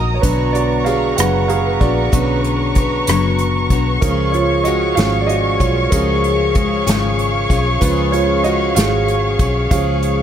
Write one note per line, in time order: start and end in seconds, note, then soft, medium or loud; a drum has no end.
0.00 0.21 A#1 medium
0.00 0.24 F#3 medium
0.00 0.25 F#3 soft
0.00 0.25 A#3 soft
0.00 0.24 D#4 soft
0.00 0.25 D#4 soft
0.00 0.25 F4 medium
0.00 0.24 F#4 soft
0.00 0.19 A#4 medium
0.00 0.23 A#4 medium
0.00 0.25 A#4 medium
0.00 0.14 C#5 medium
0.00 0.19 D#5 medium
0.00 3.99 A#5 medium
0.00 0.19 D#6 medium
0.14 0.22 C#5 medium
0.21 1.14 B1 medium
0.21 0.86 B2 medium
0.21 1.14 D3 soft
0.21 0.87 F#3 medium
0.21 1.14 B3 soft
0.21 0.85 B3 medium
0.21 0.53 D4 medium
0.21 0.86 D4 medium
0.21 0.86 F#4 medium
0.21 0.55 B4 medium
0.21 3.99 B4 medium
0.21 1.14 C#5 soft
0.21 0.88 C#5 medium
0.21 10.22 C#6 medium
0.21 kick loud
0.21 closed hi-hat medium
0.53 0.85 F#4 medium
0.53 0.86 D5 medium
0.53 closed hi-hat soft
0.84 1.18 B3 soft
0.84 1.18 D4 medium
0.84 1.17 F#4 soft
0.84 1.16 G#4 medium
0.84 1.18 F5 medium
0.84 closed hi-hat soft
0.89 1.17 C#5 medium
1.16 1.78 F#1 medium
1.16 1.82 B2 soft
1.16 1.82 F#3 soft
1.16 1.82 B3 soft
1.16 1.81 D4 medium
1.16 1.80 F#4 soft
1.16 1.26 B4 medium
1.16 1.80 C#5 medium
1.16 1.24 F#5 medium
1.16 cross-stick medium
1.16 closed hi-hat medium
1.48 1.79 G#4 medium
1.48 1.81 F5 medium
1.48 closed hi-hat soft
1.80 2.11 A#1 medium
1.80 2.12 B3 soft
1.80 2.12 D4 soft
1.80 2.13 F#4 soft
1.80 2.11 F#4 medium
1.80 2.12 C#5 medium
1.80 2.13 D5 medium
1.80 kick medium
1.80 closed hi-hat soft
2.12 3.04 B1 medium
2.12 2.76 B2 medium
2.12 2.55 D3 soft
2.12 2.76 F#3 medium
2.12 2.55 B3 soft
2.12 2.74 B3 medium
2.12 2.55 C#4 soft
2.12 2.75 D4 medium
2.12 3.36 D4 medium
2.12 2.76 F#4 medium
2.12 3.35 B4 medium
2.12 2.78 C#5 medium
2.12 kick loud
2.12 closed hi-hat medium
2.44 closed hi-hat soft
2.75 3.07 B3 medium
2.75 3.07 D4 medium
2.75 3.07 F#4 medium
2.75 3.06 C#5 medium
2.75 kick medium
2.75 closed hi-hat soft
3.07 3.67 F#1 medium
3.07 3.72 B2 medium
3.07 3.71 F#3 medium
3.07 3.71 B3 soft
3.07 3.71 D4 medium
3.07 3.70 F#4 medium
3.07 3.70 C#5 medium
3.07 cross-stick medium
3.07 closed hi-hat medium
3.39 closed hi-hat soft
3.70 4.00 B1 medium
3.70 4.02 B3 soft
3.70 4.02 D4 soft
3.70 4.03 F#4 soft
3.70 4.02 C#5 medium
3.70 kick medium
3.70 closed hi-hat soft
4.01 4.93 C#2 medium
4.01 4.65 C#3 medium
4.01 4.44 F3 soft
4.01 4.64 G#3 medium
4.01 4.45 G#3 soft
4.01 4.65 C#4 medium
4.01 4.32 C#4 medium
4.01 4.66 F4 medium
4.01 10.22 G#4 medium
4.01 4.66 G#4 medium
4.01 4.34 A#4 medium
4.01 10.22 C#5 medium
4.01 10.22 F5 medium
4.01 kick loud
4.01 closed hi-hat medium
4.32 4.42 F4 medium
4.32 4.39 C#5 medium
4.32 closed hi-hat soft
4.64 4.97 G#3 soft
4.64 4.97 C#4 soft
4.64 4.96 F4 medium
4.64 4.96 F#4 medium
4.64 4.97 D#5 medium
4.64 closed hi-hat medium
4.68 4.96 G#4 medium
4.95 5.57 G#1 medium
4.95 5.61 C#3 soft
4.95 5.26 F3 soft
4.95 5.26 G#3 soft
4.95 5.61 G#3 soft
4.95 5.61 C#4 soft
4.95 5.26 C#4 soft
4.95 5.60 F4 medium
4.95 5.59 G#4 medium
4.95 5.04 G#4 medium
4.95 5.01 F5 medium
4.95 closed hi-hat medium
4.99 snare medium
5.21 5.28 D5 medium
5.27 5.59 F#4 medium
5.27 5.60 D#5 medium
5.27 closed hi-hat soft
5.58 5.90 B1 medium
5.58 5.92 F4 soft
5.58 5.91 F4 medium
5.58 5.92 G#4 medium
5.58 5.92 C#5 medium
5.58 kick medium
5.58 closed hi-hat soft
5.63 5.92 C#4 soft
5.90 6.83 C#2 loud
5.90 6.55 C#3 medium
5.90 6.83 F3 soft
5.90 6.54 G#3 medium
5.90 6.83 G#3 soft
5.90 6.55 C#4 medium
5.90 6.84 C#4 medium
5.90 6.55 F4 medium
5.90 6.56 G#4 medium
5.90 7.14 A#4 medium
5.90 kick loud
5.90 closed hi-hat medium
6.24 closed hi-hat soft
6.55 6.87 G#3 medium
6.55 6.87 C#4 medium
6.55 6.86 F4 medium
6.55 6.85 G#4 medium
6.55 kick medium
6.55 closed hi-hat medium
6.87 7.46 G#1 medium
6.87 7.51 C#3 medium
6.87 7.51 G#3 medium
6.87 7.51 C#4 medium
6.87 7.50 F4 medium
6.87 7.48 G#4 medium
6.87 snare loud
6.87 closed hi-hat medium
7.19 closed hi-hat soft
7.50 7.80 B1 medium
7.50 7.81 C#4 medium
7.50 7.81 F4 medium
7.50 7.82 G#4 medium
7.50 kick medium
7.50 closed hi-hat soft
7.80 8.73 C#2 medium
7.80 8.45 C#3 medium
7.80 8.23 F3 soft
7.80 8.24 G#3 soft
7.80 8.43 G#3 medium
7.80 8.44 C#4 medium
7.80 8.24 C#4 soft
7.80 8.12 F4 medium
7.80 8.45 F4 medium
7.80 8.46 G#4 medium
7.80 8.14 B4 medium
7.80 kick loud
7.80 closed hi-hat medium
8.12 8.43 F4 medium
8.12 8.45 C#5 medium
8.12 closed hi-hat soft
8.44 8.76 G#3 medium
8.44 8.76 C#4 medium
8.44 8.75 F4 medium
8.44 8.75 F#4 medium
8.44 8.75 G#4 medium
8.44 8.77 D#5 medium
8.44 closed hi-hat medium
8.75 9.36 G#1 medium
8.75 9.41 C#3 medium
8.75 9.40 G#3 soft
8.75 9.40 C#4 medium
8.75 9.40 F4 medium
8.75 9.38 G#4 medium
8.75 9.68 G#4 medium
8.75 9.69 F5 medium
8.75 snare medium
8.75 closed hi-hat medium
9.08 closed hi-hat soft
9.39 9.69 B1 medium
9.39 9.71 C#4 soft
9.39 9.72 F4 soft
9.39 9.71 G#4 medium
9.39 kick medium
9.39 closed hi-hat soft
9.71 10.22 C#2 loud
9.71 10.22 C#3 medium
9.71 10.13 F3 soft
9.71 10.22 G#3 medium
9.71 10.14 G#3 soft
9.71 10.14 C#4 medium
9.71 10.22 C#4 medium
9.71 10.22 F4 medium
9.71 10.22 G#4 medium
9.71 10.22 F5 medium
9.71 kick loud
9.71 closed hi-hat medium
10.03 closed hi-hat medium